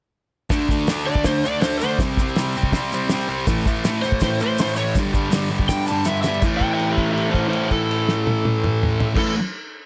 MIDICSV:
0, 0, Header, 1, 4, 480
1, 0, Start_track
1, 0, Tempo, 369458
1, 663, Time_signature, 4, 2, 24, 8
1, 12808, End_track
2, 0, Start_track
2, 0, Title_t, "Electric slide guitar"
2, 0, Program_c, 0, 29
2, 1384, Note_on_c, 0, 74, 111
2, 1620, Note_off_c, 0, 74, 0
2, 1628, Note_on_c, 0, 72, 92
2, 1863, Note_off_c, 0, 72, 0
2, 1868, Note_on_c, 0, 74, 90
2, 2084, Note_on_c, 0, 72, 100
2, 2103, Note_off_c, 0, 74, 0
2, 2321, Note_off_c, 0, 72, 0
2, 2337, Note_on_c, 0, 72, 82
2, 2579, Note_off_c, 0, 72, 0
2, 5223, Note_on_c, 0, 72, 127
2, 5464, Note_off_c, 0, 72, 0
2, 5502, Note_on_c, 0, 72, 87
2, 5724, Note_off_c, 0, 72, 0
2, 5752, Note_on_c, 0, 72, 93
2, 5969, Note_off_c, 0, 72, 0
2, 5995, Note_on_c, 0, 72, 100
2, 6191, Note_off_c, 0, 72, 0
2, 6196, Note_on_c, 0, 73, 94
2, 6429, Note_off_c, 0, 73, 0
2, 7391, Note_on_c, 0, 79, 111
2, 7625, Note_off_c, 0, 79, 0
2, 7639, Note_on_c, 0, 81, 94
2, 7868, Note_off_c, 0, 81, 0
2, 7868, Note_on_c, 0, 76, 92
2, 8071, Note_off_c, 0, 76, 0
2, 8086, Note_on_c, 0, 76, 98
2, 8331, Note_off_c, 0, 76, 0
2, 8525, Note_on_c, 0, 76, 75
2, 8530, Note_on_c, 0, 79, 85
2, 8733, Note_off_c, 0, 76, 0
2, 8748, Note_on_c, 0, 76, 79
2, 8751, Note_off_c, 0, 79, 0
2, 8766, Note_on_c, 0, 79, 86
2, 8972, Note_off_c, 0, 76, 0
2, 8982, Note_on_c, 0, 67, 77
2, 8987, Note_on_c, 0, 76, 96
2, 9029, Note_off_c, 0, 79, 0
2, 9247, Note_off_c, 0, 67, 0
2, 9258, Note_off_c, 0, 76, 0
2, 9262, Note_on_c, 0, 67, 63
2, 9272, Note_on_c, 0, 76, 83
2, 9479, Note_on_c, 0, 64, 68
2, 9498, Note_on_c, 0, 72, 87
2, 9506, Note_off_c, 0, 67, 0
2, 9521, Note_off_c, 0, 76, 0
2, 9725, Note_off_c, 0, 72, 0
2, 9733, Note_off_c, 0, 64, 0
2, 9741, Note_on_c, 0, 72, 95
2, 9754, Note_on_c, 0, 64, 76
2, 9991, Note_off_c, 0, 64, 0
2, 9995, Note_off_c, 0, 72, 0
2, 10027, Note_on_c, 0, 69, 83
2, 11785, Note_off_c, 0, 69, 0
2, 11919, Note_on_c, 0, 69, 102
2, 12116, Note_off_c, 0, 69, 0
2, 12808, End_track
3, 0, Start_track
3, 0, Title_t, "Distorted electric guitar"
3, 0, Program_c, 1, 30
3, 651, Note_on_c, 1, 57, 92
3, 653, Note_on_c, 1, 50, 86
3, 661, Note_on_c, 1, 62, 94
3, 907, Note_off_c, 1, 50, 0
3, 907, Note_off_c, 1, 57, 0
3, 908, Note_off_c, 1, 62, 0
3, 923, Note_on_c, 1, 50, 85
3, 923, Note_on_c, 1, 57, 83
3, 923, Note_on_c, 1, 62, 79
3, 1147, Note_off_c, 1, 50, 0
3, 1158, Note_off_c, 1, 57, 0
3, 1163, Note_on_c, 1, 50, 86
3, 1167, Note_off_c, 1, 62, 0
3, 1174, Note_on_c, 1, 57, 92
3, 1183, Note_on_c, 1, 62, 99
3, 1394, Note_off_c, 1, 50, 0
3, 1400, Note_off_c, 1, 62, 0
3, 1405, Note_off_c, 1, 57, 0
3, 1410, Note_on_c, 1, 50, 76
3, 1416, Note_on_c, 1, 62, 90
3, 1420, Note_on_c, 1, 57, 83
3, 1627, Note_off_c, 1, 57, 0
3, 1632, Note_off_c, 1, 50, 0
3, 1637, Note_off_c, 1, 62, 0
3, 1643, Note_on_c, 1, 57, 115
3, 1647, Note_on_c, 1, 50, 93
3, 1653, Note_on_c, 1, 62, 123
3, 1870, Note_off_c, 1, 50, 0
3, 1883, Note_off_c, 1, 57, 0
3, 1886, Note_on_c, 1, 50, 80
3, 1892, Note_off_c, 1, 62, 0
3, 1898, Note_on_c, 1, 57, 80
3, 1908, Note_on_c, 1, 62, 88
3, 2111, Note_off_c, 1, 57, 0
3, 2116, Note_off_c, 1, 50, 0
3, 2118, Note_off_c, 1, 62, 0
3, 2126, Note_on_c, 1, 57, 89
3, 2132, Note_on_c, 1, 50, 74
3, 2133, Note_on_c, 1, 62, 84
3, 2351, Note_off_c, 1, 50, 0
3, 2366, Note_off_c, 1, 62, 0
3, 2367, Note_on_c, 1, 50, 84
3, 2372, Note_off_c, 1, 57, 0
3, 2382, Note_on_c, 1, 62, 88
3, 2388, Note_on_c, 1, 57, 87
3, 2587, Note_off_c, 1, 50, 0
3, 2594, Note_off_c, 1, 62, 0
3, 2597, Note_off_c, 1, 57, 0
3, 2613, Note_on_c, 1, 48, 94
3, 2626, Note_on_c, 1, 55, 98
3, 2644, Note_on_c, 1, 60, 105
3, 2847, Note_off_c, 1, 48, 0
3, 2863, Note_off_c, 1, 55, 0
3, 2863, Note_on_c, 1, 48, 80
3, 2866, Note_off_c, 1, 60, 0
3, 2878, Note_on_c, 1, 55, 88
3, 2882, Note_on_c, 1, 60, 91
3, 3081, Note_off_c, 1, 48, 0
3, 3083, Note_off_c, 1, 55, 0
3, 3093, Note_off_c, 1, 60, 0
3, 3097, Note_on_c, 1, 48, 91
3, 3099, Note_on_c, 1, 55, 84
3, 3109, Note_on_c, 1, 60, 94
3, 3311, Note_off_c, 1, 48, 0
3, 3326, Note_on_c, 1, 48, 80
3, 3327, Note_off_c, 1, 55, 0
3, 3333, Note_off_c, 1, 60, 0
3, 3343, Note_on_c, 1, 55, 95
3, 3348, Note_on_c, 1, 60, 89
3, 3525, Note_off_c, 1, 48, 0
3, 3528, Note_off_c, 1, 60, 0
3, 3529, Note_off_c, 1, 55, 0
3, 3540, Note_on_c, 1, 48, 90
3, 3543, Note_on_c, 1, 60, 112
3, 3545, Note_on_c, 1, 55, 107
3, 3786, Note_off_c, 1, 48, 0
3, 3797, Note_off_c, 1, 55, 0
3, 3801, Note_on_c, 1, 48, 76
3, 3802, Note_off_c, 1, 60, 0
3, 3812, Note_on_c, 1, 55, 84
3, 3818, Note_on_c, 1, 60, 93
3, 4036, Note_off_c, 1, 48, 0
3, 4042, Note_off_c, 1, 55, 0
3, 4052, Note_on_c, 1, 48, 80
3, 4054, Note_off_c, 1, 60, 0
3, 4058, Note_on_c, 1, 55, 79
3, 4070, Note_on_c, 1, 60, 90
3, 4250, Note_off_c, 1, 48, 0
3, 4259, Note_off_c, 1, 60, 0
3, 4262, Note_off_c, 1, 55, 0
3, 4265, Note_on_c, 1, 48, 87
3, 4274, Note_on_c, 1, 60, 101
3, 4278, Note_on_c, 1, 55, 84
3, 4498, Note_off_c, 1, 48, 0
3, 4503, Note_off_c, 1, 60, 0
3, 4504, Note_off_c, 1, 55, 0
3, 4508, Note_on_c, 1, 45, 98
3, 4516, Note_on_c, 1, 57, 98
3, 4525, Note_on_c, 1, 52, 99
3, 4753, Note_off_c, 1, 45, 0
3, 4756, Note_off_c, 1, 52, 0
3, 4765, Note_off_c, 1, 57, 0
3, 4768, Note_on_c, 1, 45, 77
3, 4771, Note_on_c, 1, 52, 93
3, 4781, Note_on_c, 1, 57, 88
3, 4983, Note_off_c, 1, 45, 0
3, 4988, Note_off_c, 1, 52, 0
3, 4988, Note_off_c, 1, 57, 0
3, 4999, Note_on_c, 1, 45, 95
3, 5004, Note_on_c, 1, 52, 87
3, 5004, Note_on_c, 1, 57, 104
3, 5237, Note_off_c, 1, 45, 0
3, 5243, Note_off_c, 1, 52, 0
3, 5243, Note_off_c, 1, 57, 0
3, 5252, Note_on_c, 1, 45, 86
3, 5258, Note_on_c, 1, 52, 89
3, 5258, Note_on_c, 1, 57, 95
3, 5474, Note_off_c, 1, 45, 0
3, 5474, Note_off_c, 1, 52, 0
3, 5489, Note_on_c, 1, 45, 118
3, 5489, Note_on_c, 1, 52, 100
3, 5496, Note_off_c, 1, 57, 0
3, 5511, Note_on_c, 1, 57, 122
3, 5735, Note_off_c, 1, 45, 0
3, 5741, Note_off_c, 1, 52, 0
3, 5751, Note_on_c, 1, 45, 88
3, 5757, Note_on_c, 1, 52, 96
3, 5759, Note_off_c, 1, 57, 0
3, 5774, Note_on_c, 1, 57, 91
3, 5971, Note_off_c, 1, 45, 0
3, 5982, Note_off_c, 1, 52, 0
3, 5986, Note_on_c, 1, 45, 83
3, 5991, Note_off_c, 1, 57, 0
3, 5997, Note_on_c, 1, 52, 75
3, 6007, Note_on_c, 1, 57, 80
3, 6191, Note_off_c, 1, 45, 0
3, 6200, Note_off_c, 1, 52, 0
3, 6206, Note_off_c, 1, 57, 0
3, 6207, Note_on_c, 1, 45, 82
3, 6215, Note_on_c, 1, 52, 85
3, 6222, Note_on_c, 1, 57, 96
3, 6428, Note_off_c, 1, 45, 0
3, 6432, Note_off_c, 1, 52, 0
3, 6435, Note_off_c, 1, 57, 0
3, 6469, Note_on_c, 1, 43, 100
3, 6476, Note_on_c, 1, 50, 104
3, 6487, Note_on_c, 1, 55, 120
3, 6656, Note_off_c, 1, 43, 0
3, 6659, Note_off_c, 1, 50, 0
3, 6672, Note_on_c, 1, 43, 76
3, 6675, Note_on_c, 1, 50, 80
3, 6678, Note_off_c, 1, 55, 0
3, 6694, Note_on_c, 1, 55, 82
3, 6878, Note_off_c, 1, 43, 0
3, 6894, Note_on_c, 1, 43, 92
3, 6902, Note_off_c, 1, 50, 0
3, 6906, Note_off_c, 1, 55, 0
3, 6917, Note_on_c, 1, 50, 95
3, 6922, Note_on_c, 1, 55, 88
3, 7141, Note_off_c, 1, 43, 0
3, 7155, Note_off_c, 1, 50, 0
3, 7156, Note_on_c, 1, 43, 95
3, 7166, Note_off_c, 1, 55, 0
3, 7171, Note_on_c, 1, 50, 96
3, 7182, Note_on_c, 1, 55, 97
3, 7399, Note_off_c, 1, 43, 0
3, 7400, Note_off_c, 1, 50, 0
3, 7408, Note_off_c, 1, 55, 0
3, 7415, Note_on_c, 1, 43, 109
3, 7416, Note_on_c, 1, 50, 107
3, 7423, Note_on_c, 1, 55, 115
3, 7657, Note_off_c, 1, 43, 0
3, 7668, Note_off_c, 1, 50, 0
3, 7672, Note_off_c, 1, 55, 0
3, 7672, Note_on_c, 1, 43, 78
3, 7684, Note_on_c, 1, 50, 89
3, 7693, Note_on_c, 1, 55, 86
3, 7874, Note_off_c, 1, 43, 0
3, 7886, Note_off_c, 1, 50, 0
3, 7890, Note_on_c, 1, 43, 88
3, 7896, Note_off_c, 1, 55, 0
3, 7902, Note_on_c, 1, 50, 87
3, 7911, Note_on_c, 1, 55, 94
3, 8124, Note_off_c, 1, 43, 0
3, 8130, Note_off_c, 1, 50, 0
3, 8136, Note_off_c, 1, 55, 0
3, 8140, Note_on_c, 1, 43, 78
3, 8145, Note_on_c, 1, 50, 95
3, 8152, Note_on_c, 1, 55, 96
3, 8327, Note_off_c, 1, 50, 0
3, 8332, Note_on_c, 1, 45, 94
3, 8350, Note_off_c, 1, 55, 0
3, 8351, Note_off_c, 1, 43, 0
3, 8355, Note_on_c, 1, 52, 99
3, 8396, Note_on_c, 1, 57, 119
3, 11877, Note_off_c, 1, 45, 0
3, 11882, Note_on_c, 1, 45, 102
3, 11920, Note_off_c, 1, 52, 0
3, 11925, Note_on_c, 1, 52, 110
3, 11937, Note_off_c, 1, 57, 0
3, 11943, Note_on_c, 1, 57, 110
3, 12104, Note_off_c, 1, 45, 0
3, 12126, Note_off_c, 1, 52, 0
3, 12134, Note_off_c, 1, 57, 0
3, 12808, End_track
4, 0, Start_track
4, 0, Title_t, "Drums"
4, 641, Note_on_c, 9, 46, 59
4, 652, Note_on_c, 9, 36, 105
4, 652, Note_on_c, 9, 38, 100
4, 669, Note_on_c, 9, 82, 81
4, 771, Note_off_c, 9, 46, 0
4, 781, Note_off_c, 9, 38, 0
4, 782, Note_off_c, 9, 36, 0
4, 799, Note_off_c, 9, 82, 0
4, 895, Note_on_c, 9, 36, 85
4, 920, Note_on_c, 9, 82, 67
4, 1016, Note_off_c, 9, 82, 0
4, 1016, Note_on_c, 9, 82, 27
4, 1025, Note_off_c, 9, 36, 0
4, 1133, Note_on_c, 9, 46, 68
4, 1143, Note_on_c, 9, 38, 116
4, 1146, Note_off_c, 9, 82, 0
4, 1159, Note_on_c, 9, 82, 89
4, 1263, Note_off_c, 9, 46, 0
4, 1273, Note_off_c, 9, 38, 0
4, 1289, Note_off_c, 9, 82, 0
4, 1500, Note_on_c, 9, 36, 97
4, 1606, Note_on_c, 9, 46, 67
4, 1616, Note_on_c, 9, 38, 118
4, 1619, Note_off_c, 9, 36, 0
4, 1619, Note_on_c, 9, 36, 99
4, 1622, Note_on_c, 9, 82, 86
4, 1736, Note_off_c, 9, 46, 0
4, 1746, Note_off_c, 9, 38, 0
4, 1749, Note_off_c, 9, 36, 0
4, 1752, Note_off_c, 9, 82, 0
4, 1887, Note_on_c, 9, 82, 68
4, 2017, Note_off_c, 9, 82, 0
4, 2096, Note_on_c, 9, 46, 68
4, 2107, Note_on_c, 9, 38, 121
4, 2120, Note_on_c, 9, 82, 83
4, 2226, Note_off_c, 9, 46, 0
4, 2231, Note_off_c, 9, 82, 0
4, 2231, Note_on_c, 9, 82, 27
4, 2237, Note_off_c, 9, 38, 0
4, 2351, Note_off_c, 9, 82, 0
4, 2351, Note_on_c, 9, 82, 73
4, 2481, Note_off_c, 9, 82, 0
4, 2583, Note_on_c, 9, 36, 108
4, 2584, Note_on_c, 9, 46, 53
4, 2595, Note_on_c, 9, 38, 94
4, 2596, Note_on_c, 9, 82, 78
4, 2713, Note_off_c, 9, 36, 0
4, 2714, Note_off_c, 9, 46, 0
4, 2725, Note_off_c, 9, 38, 0
4, 2725, Note_off_c, 9, 82, 0
4, 2824, Note_on_c, 9, 36, 96
4, 2838, Note_on_c, 9, 82, 69
4, 2954, Note_off_c, 9, 36, 0
4, 2964, Note_off_c, 9, 82, 0
4, 2964, Note_on_c, 9, 82, 26
4, 3062, Note_on_c, 9, 46, 66
4, 3072, Note_on_c, 9, 38, 121
4, 3094, Note_off_c, 9, 82, 0
4, 3097, Note_on_c, 9, 82, 92
4, 3192, Note_off_c, 9, 46, 0
4, 3202, Note_off_c, 9, 38, 0
4, 3227, Note_off_c, 9, 82, 0
4, 3336, Note_on_c, 9, 82, 66
4, 3421, Note_on_c, 9, 36, 93
4, 3465, Note_off_c, 9, 82, 0
4, 3540, Note_off_c, 9, 36, 0
4, 3540, Note_on_c, 9, 36, 98
4, 3541, Note_on_c, 9, 46, 65
4, 3551, Note_on_c, 9, 38, 116
4, 3567, Note_on_c, 9, 82, 82
4, 3669, Note_off_c, 9, 36, 0
4, 3671, Note_off_c, 9, 46, 0
4, 3681, Note_off_c, 9, 38, 0
4, 3697, Note_off_c, 9, 82, 0
4, 3799, Note_on_c, 9, 82, 78
4, 3929, Note_off_c, 9, 82, 0
4, 4011, Note_on_c, 9, 46, 60
4, 4021, Note_on_c, 9, 38, 115
4, 4031, Note_on_c, 9, 82, 106
4, 4141, Note_off_c, 9, 46, 0
4, 4151, Note_off_c, 9, 38, 0
4, 4161, Note_off_c, 9, 82, 0
4, 4165, Note_on_c, 9, 82, 30
4, 4295, Note_off_c, 9, 82, 0
4, 4505, Note_on_c, 9, 46, 56
4, 4505, Note_on_c, 9, 82, 97
4, 4511, Note_on_c, 9, 36, 110
4, 4515, Note_on_c, 9, 38, 103
4, 4635, Note_off_c, 9, 46, 0
4, 4635, Note_off_c, 9, 82, 0
4, 4641, Note_off_c, 9, 36, 0
4, 4645, Note_off_c, 9, 38, 0
4, 4753, Note_on_c, 9, 36, 90
4, 4769, Note_on_c, 9, 82, 81
4, 4876, Note_off_c, 9, 82, 0
4, 4876, Note_on_c, 9, 82, 32
4, 4883, Note_off_c, 9, 36, 0
4, 4991, Note_on_c, 9, 46, 62
4, 4995, Note_off_c, 9, 82, 0
4, 4995, Note_on_c, 9, 82, 103
4, 5002, Note_on_c, 9, 38, 127
4, 5121, Note_off_c, 9, 46, 0
4, 5125, Note_off_c, 9, 82, 0
4, 5132, Note_off_c, 9, 38, 0
4, 5239, Note_on_c, 9, 82, 79
4, 5356, Note_on_c, 9, 36, 95
4, 5369, Note_off_c, 9, 82, 0
4, 5461, Note_on_c, 9, 82, 99
4, 5476, Note_on_c, 9, 46, 62
4, 5478, Note_off_c, 9, 36, 0
4, 5478, Note_on_c, 9, 36, 96
4, 5486, Note_on_c, 9, 38, 106
4, 5591, Note_off_c, 9, 82, 0
4, 5606, Note_off_c, 9, 46, 0
4, 5607, Note_off_c, 9, 36, 0
4, 5616, Note_off_c, 9, 38, 0
4, 5719, Note_on_c, 9, 82, 82
4, 5848, Note_off_c, 9, 82, 0
4, 5950, Note_on_c, 9, 82, 100
4, 5966, Note_on_c, 9, 46, 69
4, 5977, Note_on_c, 9, 38, 112
4, 6058, Note_off_c, 9, 82, 0
4, 6058, Note_on_c, 9, 82, 29
4, 6096, Note_off_c, 9, 46, 0
4, 6107, Note_off_c, 9, 38, 0
4, 6187, Note_off_c, 9, 82, 0
4, 6187, Note_on_c, 9, 82, 83
4, 6317, Note_off_c, 9, 82, 0
4, 6432, Note_on_c, 9, 82, 90
4, 6436, Note_on_c, 9, 36, 101
4, 6442, Note_on_c, 9, 46, 51
4, 6452, Note_on_c, 9, 38, 107
4, 6562, Note_off_c, 9, 82, 0
4, 6566, Note_off_c, 9, 36, 0
4, 6572, Note_off_c, 9, 46, 0
4, 6582, Note_off_c, 9, 38, 0
4, 6678, Note_on_c, 9, 36, 86
4, 6683, Note_on_c, 9, 82, 79
4, 6808, Note_off_c, 9, 36, 0
4, 6813, Note_off_c, 9, 82, 0
4, 6909, Note_on_c, 9, 82, 107
4, 6913, Note_on_c, 9, 46, 68
4, 6924, Note_on_c, 9, 38, 126
4, 7039, Note_off_c, 9, 82, 0
4, 7043, Note_off_c, 9, 46, 0
4, 7047, Note_on_c, 9, 82, 32
4, 7054, Note_off_c, 9, 38, 0
4, 7177, Note_off_c, 9, 82, 0
4, 7270, Note_on_c, 9, 36, 100
4, 7383, Note_on_c, 9, 46, 62
4, 7391, Note_off_c, 9, 36, 0
4, 7391, Note_on_c, 9, 36, 105
4, 7393, Note_on_c, 9, 38, 120
4, 7398, Note_on_c, 9, 82, 102
4, 7513, Note_off_c, 9, 46, 0
4, 7519, Note_off_c, 9, 82, 0
4, 7519, Note_on_c, 9, 82, 34
4, 7521, Note_off_c, 9, 36, 0
4, 7523, Note_off_c, 9, 38, 0
4, 7625, Note_off_c, 9, 82, 0
4, 7625, Note_on_c, 9, 82, 91
4, 7750, Note_off_c, 9, 82, 0
4, 7750, Note_on_c, 9, 82, 30
4, 7854, Note_off_c, 9, 82, 0
4, 7854, Note_on_c, 9, 82, 116
4, 7873, Note_on_c, 9, 38, 71
4, 7984, Note_off_c, 9, 82, 0
4, 8003, Note_off_c, 9, 38, 0
4, 8005, Note_on_c, 9, 82, 31
4, 8095, Note_off_c, 9, 82, 0
4, 8095, Note_on_c, 9, 82, 90
4, 8110, Note_on_c, 9, 38, 93
4, 8225, Note_off_c, 9, 82, 0
4, 8227, Note_on_c, 9, 82, 30
4, 8240, Note_off_c, 9, 38, 0
4, 8338, Note_on_c, 9, 49, 83
4, 8342, Note_off_c, 9, 82, 0
4, 8342, Note_on_c, 9, 82, 73
4, 8346, Note_on_c, 9, 36, 95
4, 8468, Note_off_c, 9, 49, 0
4, 8472, Note_off_c, 9, 82, 0
4, 8476, Note_off_c, 9, 36, 0
4, 8586, Note_on_c, 9, 36, 69
4, 8588, Note_on_c, 9, 49, 46
4, 8716, Note_off_c, 9, 36, 0
4, 8718, Note_off_c, 9, 49, 0
4, 8826, Note_on_c, 9, 57, 49
4, 8956, Note_off_c, 9, 57, 0
4, 9065, Note_on_c, 9, 36, 63
4, 9065, Note_on_c, 9, 49, 42
4, 9195, Note_off_c, 9, 36, 0
4, 9195, Note_off_c, 9, 49, 0
4, 9321, Note_on_c, 9, 57, 49
4, 9451, Note_off_c, 9, 57, 0
4, 9540, Note_on_c, 9, 36, 70
4, 9550, Note_on_c, 9, 49, 51
4, 9670, Note_off_c, 9, 36, 0
4, 9680, Note_off_c, 9, 49, 0
4, 9783, Note_on_c, 9, 57, 58
4, 9913, Note_off_c, 9, 57, 0
4, 10018, Note_on_c, 9, 36, 59
4, 10018, Note_on_c, 9, 49, 47
4, 10148, Note_off_c, 9, 36, 0
4, 10148, Note_off_c, 9, 49, 0
4, 10274, Note_on_c, 9, 57, 50
4, 10404, Note_off_c, 9, 57, 0
4, 10505, Note_on_c, 9, 38, 95
4, 10635, Note_off_c, 9, 38, 0
4, 10745, Note_on_c, 9, 48, 97
4, 10875, Note_off_c, 9, 48, 0
4, 10981, Note_on_c, 9, 48, 91
4, 11111, Note_off_c, 9, 48, 0
4, 11228, Note_on_c, 9, 47, 103
4, 11358, Note_off_c, 9, 47, 0
4, 11473, Note_on_c, 9, 45, 107
4, 11603, Note_off_c, 9, 45, 0
4, 11698, Note_on_c, 9, 43, 108
4, 11828, Note_off_c, 9, 43, 0
4, 11897, Note_on_c, 9, 36, 112
4, 11902, Note_on_c, 9, 49, 107
4, 11913, Note_on_c, 9, 38, 105
4, 12026, Note_off_c, 9, 36, 0
4, 12032, Note_off_c, 9, 49, 0
4, 12043, Note_off_c, 9, 38, 0
4, 12808, End_track
0, 0, End_of_file